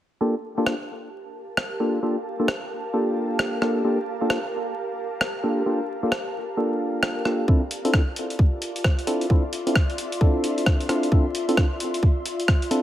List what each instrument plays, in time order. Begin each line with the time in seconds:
0.21 synth stab A#3 D4 F4 G4 A4, ambient pad G4
0.34 ambient pad A#4 A5
0.48 ambient pad F5
0.58 synth stab A#3 D4 F4 G4 A4
0.66 cross-stick
1.57 cross-stick
1.80 synth stab A#3 D4 F4 G4 A4
2.03 synth stab A#3 D4 F4 G4 A4
2.39 synth stab A#3 D4 F4 G4 A4
2.48 cross-stick
2.94 synth stab A#3 D4 F4 G4 A4
3.39 cross-stick
3.62 synth stab A#3 D4 F4 G4 A4, cross-stick
3.84 synth stab A#3 D4 F4 G4 A4
4.21 synth stab A#3 D4 F4 G4 A4
4.30 cross-stick
5.21 cross-stick
5.43 synth stab A#3 D4 F4 G4 A4
5.66 synth stab A#3 D4 F4 G4 A4
6.03 synth stab A#3 D4 F4 G4 A4
6.12 cross-stick
6.57 synth stab A#3 D4 F4 G4 A4
7.03 cross-stick
7.25 synth stab A#3 D4 F4 G4 A4, cross-stick
7.48 synth stab C4 D4 E4 F4 A4, ambient pad F4, kick
7.59 ambient pad D5
7.71 closed hi-hat
7.85 synth stab C4 D4 E4 F4 A4, closed hi-hat
7.93 kick, cross-stick
8.11 ambient pad E5
8.16 closed hi-hat
8.23 ambient pad C6
8.30 closed hi-hat
8.39 kick
8.62 closed hi-hat
8.76 closed hi-hat
8.84 kick, cross-stick
8.99 closed hi-hat
9.07 synth stab C4 D4 E4 F4 A4, closed hi-hat
9.21 closed hi-hat
9.30 synth stab C4 D4 E4 F4 A4, kick
9.53 closed hi-hat
9.67 synth stab C4 D4 E4 F4 A4, closed hi-hat
9.75 kick, cross-stick
9.90 closed hi-hat
9.98 closed hi-hat
10.12 closed hi-hat
10.21 synth stab C4 D4 E4 F4 A4, kick
10.44 closed hi-hat
10.58 closed hi-hat
10.66 kick, cross-stick
10.81 closed hi-hat
10.89 synth stab C4 D4 E4 F4 A4, cross-stick, closed hi-hat
11.03 closed hi-hat
11.12 synth stab C4 D4 E4 F4 A4, kick
11.35 closed hi-hat
11.48 synth stab C4 D4 E4 F4 A4, closed hi-hat
11.57 kick, cross-stick
11.80 closed hi-hat
11.94 closed hi-hat
12.03 kick
12.26 closed hi-hat
12.40 closed hi-hat
12.48 kick, cross-stick
12.62 closed hi-hat
12.71 synth stab C4 D4 E4 F4 A4, closed hi-hat